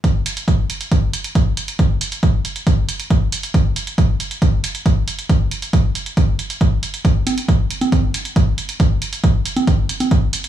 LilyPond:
\new DrumStaff \with { instrumentName = "Drums" } \drummode { \time 4/4 \tempo 4 = 137 <hh bd>8 hh16 hh16 <hh bd>8 hh16 hh16 <hh bd>8 hh16 hh16 <hh bd>8 hh16 hh16 | <hh bd>8 hh16 hh16 <hh bd>8 hh16 hh16 <hh bd>8 hh16 hh16 <hh bd>8 hh16 hh16 | <hh bd>8 hh16 hh16 <hh bd>8 hh16 hh16 <hh bd>8 hh16 hh16 <hh bd>8 hh16 hh16 | <hh bd>8 hh16 hh16 <hh bd>8 hh16 hh16 <hh bd>8 hh16 hh16 <hh bd>8 hh16 hh16 |
<hh bd>8 <cgho hh>16 hh16 <hh bd>8 hh16 <cgho hh>16 <cgho hh bd>8 hh16 hh16 <hh bd>8 hh16 hh16 | <hh bd>8 hh16 hh16 <hh bd>8 hh16 <cgho hh>16 <hh bd>8 hh16 <cgho hh>16 <hh bd>8 hh16 hh16 | }